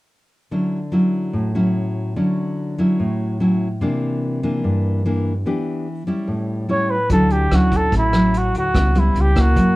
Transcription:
0.51 D3 F#3 C#4 E4
0.92 F#3 C#4 E4
1.33 A2
1.55 F#3 C#4 E4
2.16 D3 F#3 C#4 E4
2.78 F#3 C#4 E4
3.00 A2
3.40 F#3 C#4 E4
3.81 C3 E3 A#3 D4
4.43 E3 A#3 D4
4.64 G2
5.06 E3 A#3 D4
5.46 E3 B3 D4 G4
6.07 G3 C#4 E4
6.28 A2
6.69 G3 C#4 E4 C#5
6.90 B4
7.09 D2 D3 F#3 C#4 E4 A4, kick, closed hi-hat
7.30 G4, closed hi-hat
7.51 D2 F#3 C#4 E4 F#4, cross-stick, closed hi-hat
7.72 kick, closed hi-hat
7.76 A4
7.92 A1 A2, kick, closed hi-hat
7.97 E4
8.13 F#3 C#4 E4, cross-stick, closed hi-hat
8.34 F#4, closed hi-hat
8.54 D2, closed hi-hat
8.59 F#4
8.74 C#2 C#3 G3 B3 E4, kick, cross-stick, closed hi-hat
8.95 G3 B3 E4, closed hi-hat
9.15 C#2, closed hi-hat
9.21 G4
9.35 A#3 E4, kick, cross-stick, closed hi-hat
9.40 F#4
9.56 F#2 F#3, kick, closed hi-hat

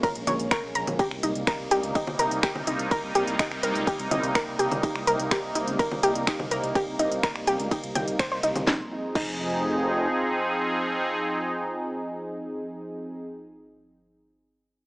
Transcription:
Already playing: G#3 A#3 C#4
0.03 A#4 A#5, kick, closed hi-hat, ride
0.15 A#1, closed hi-hat
0.27 A#1 C#5 C#6, closed hi-hat, low conga
0.39 A#1, closed hi-hat
0.51 A#4 A#5, finger snap, kick, closed hi-hat, ride
0.63 A#1
0.75 A#1 A#5 A#6, closed hi-hat
0.87 A#1, closed hi-hat, low conga
0.99 C3 G3 A#3 D#4 G4 G5, kick, closed hi-hat, ride
1.11 C2, finger snap
1.23 C2 D#4 D#5, closed hi-hat
1.35 C2, closed hi-hat
1.47 A#4 A#5, finger snap, kick, closed hi-hat, ride
1.59 C2
1.71 C2 G4 G5, closed hi-hat
1.83 C#2, closed hi-hat
1.95 D#4 D#5, kick, closed hi-hat, ride
2.07 C2, low conga
2.19 C2 A#4 A#5, closed hi-hat
2.31 C2, closed hi-hat
2.43 G4 G5, finger snap, kick, closed hi-hat, ride
2.55 C2, low conga
2.67 C2 D#4 D#5, closed hi-hat
2.79 C2, closed hi-hat
2.91 A#4 A#5, kick, closed hi-hat, ride
3.03 C2
3.15 C2 G4 G5, closed hi-hat
3.27 C2, closed hi-hat
3.39 D#4 D#5, finger snap, kick, closed hi-hat, ride
3.51 C2, finger snap
3.63 C2 A#4 A#5, closed hi-hat
3.75 C#2, closed hi-hat
3.87 G4 G5, kick, closed hi-hat, ride
3.99 C2, closed hi-hat
4.11 C2 D#4 D#5, closed hi-hat, low conga
4.23 C2, closed hi-hat
4.35 A#4 A#5, finger snap, kick, closed hi-hat, ride
4.47 C2
4.59 C2 G4 G5, closed hi-hat
4.71 C2, closed hi-hat, low conga
4.83 D#4 D#5, kick, closed hi-hat, ride
4.95 C2, finger snap
5.07 C2 A#4 A#5, closed hi-hat
5.20 C2, closed hi-hat
5.31 G4 G5, finger snap, kick, closed hi-hat, ride
5.43 C2
5.55 C2 D#4 D#5, closed hi-hat
5.68 C#2, closed hi-hat
5.79 A#4 A#5, kick, closed hi-hat, ride
5.91 C2, low conga
6.03 C2 G4 G5, closed hi-hat
6.15 C2, closed hi-hat
6.27 D#4 D#5, finger snap, kick, closed hi-hat, ride
6.39 C2, low conga
6.51 C2 A#4 A#5, closed hi-hat
6.63 C2, closed hi-hat
6.75 G4 G5, kick, closed hi-hat, ride
6.88 C2
6.99 C2 D#4 D#5, closed hi-hat
7.12 C2, closed hi-hat
7.23 A#4 A#5, finger snap, kick, closed hi-hat, ride
7.36 C2, finger snap
7.47 C2 G4 G5, closed hi-hat
7.60 C#2, closed hi-hat
7.71 D#4 D#5, kick, closed hi-hat, ride
7.84 C2, closed hi-hat
7.95 C2 G5 G6, closed hi-hat, low conga
8.08 C2, closed hi-hat
8.19 C5 C6, finger snap, kick, closed hi-hat, ride
8.32 C2 C5 C6
8.43 C2 D#4 D#5, closed hi-hat
8.56 C2, closed hi-hat, low conga
8.67 F1 F3 C4 D#4 G#4, kick, snare
9.15 F1 D#4, kick, crash

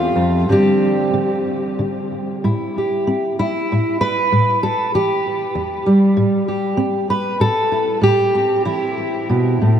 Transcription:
Already playing: E2 A3 C4 F4
0.16 F2
0.49 G2 D3 G3 C4 G4
1.13 D3
1.79 D3
2.44 A2 E4
2.78 G4
3.07 C4
3.39 E4
3.72 A2
4.01 B4
4.32 A2
4.63 A4
4.95 E3 G4
5.55 E2
5.86 G3
6.17 A2
6.48 G4
6.77 C4
7.10 B4
7.40 A2 A4
7.72 E4
8.01 A2 G4
8.35 C4
8.65 E3 E4
9.29 B2
9.62 A2

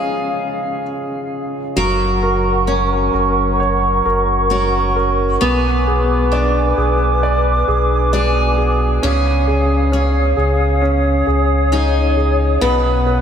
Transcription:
Already playing: C#3 F3 G#3 C#4 F4 G#4 C#5 D#5 F5
1.75 F#1 F#3 A#4 F#5 C#6
2.23 A#4
2.67 C#4 C#5
3.14 F#1 A#4
3.60 C#5
4.06 F#1 A#4
4.50 C#4 F#4 A#4 C#5
4.96 A#4
5.41 B1 B3 G#4 B4 G#5 D6
5.87 G#4
6.32 D4 D5
6.77 B1 G#4
7.23 D5
7.68 B1 G#4
8.13 D4 F#4 G#4 D5
8.58 G#4
9.03 C#2 C#3 C#4 G#4 C#5 F5 D#6
9.47 G#4
9.92 C#4
10.37 C#2 G#4
10.82 C#4
11.27 C#2 G#4
11.72 C#4 D#4 G#4
12.17 G#4
12.61 B1 B2 B3 B4 F#5
13.06 B4

